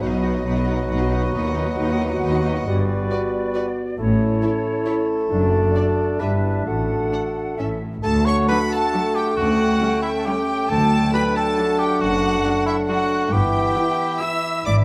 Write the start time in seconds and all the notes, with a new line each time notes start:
0.01 B1 B2 F#3 B3 D#4 F#4 B4 D#5 F#5
0.12 F#4 D#5
0.23 D#4 B4 F#5
0.35 F#4 D#5
0.46 B1 B2 D#4 B4 F#5
0.57 F#4 D#5
0.67 D#4 B4 F#5
0.79 F#4 D#5
0.90 B1 B2 D#4 B4 F#5
1.01 F#4 D#5
1.12 D#4 B4 F#5
1.23 F#4 D#5
1.34 D#2 D#4 F#4 B4 D#5 F#5
1.45 F#4 D#5 F#5
1.56 D#4 B4 D#5
1.67 F#4 D#5 F#5
1.78 D#2 D#4 B4 D#5
1.89 F#4 D#5 F#5
2.00 D#4 B4 D#5
2.11 F#4 D#5 F#5
2.23 D#2 D#4 B4 D#5
2.34 F#4 D#5 F#5
2.45 D#4 B4 D#5
2.56 F#4 D#5 F#5
2.66 G1 G2 G3 B3 F#4 B4 D5
3.11 F#4 B4 D5
3.54 F#4 B4 D5
3.98 A1 A2 A3 C#4 E4 A4 C#5
4.42 E4 A4 C#5
4.86 E4 A4 C#5
5.30 F#1 F#2 D4 F#4 D5
5.75 D4 A4 D5
6.19 G1 G2 G3 D4 E4 B4 E5
6.65 A1 A2 A3 F#4 A4 F#5
7.12 D4 A4 F#5
7.57 A1 A2 C#4 E4 A4 E5
8.03 D2 A3 D4 F#4 A4 F#5 A5
8.26 C#5 C#6
8.48 F#3 D4 B4 B5
8.71 A4 A5
8.93 F#3 D4
9.15 G4 G5
9.36 D2 C#4 F#4 F#5 G5
9.81 G3 C#4
10.02 E4 E5
10.18 A4
10.25 G3 C#4 G4 G5
10.69 D2 F#3 A3 D4 A4 A5
11.13 F#3 D4 B4 B5
11.36 A4 A5
11.58 F#3 D4 F#5
11.79 G4 G5
12.01 F#1 F#2 F#4 F#5
12.45 F#3 D4
12.66 E4 E5
12.88 F#3 D4 F#4 F#5
13.32 G1 G2 E3 B3 E4 G4 E5 G5
13.77 E3 E4
14.21 E3 E4 E5 E6
14.66 G#1 G#2 D4 D5 D6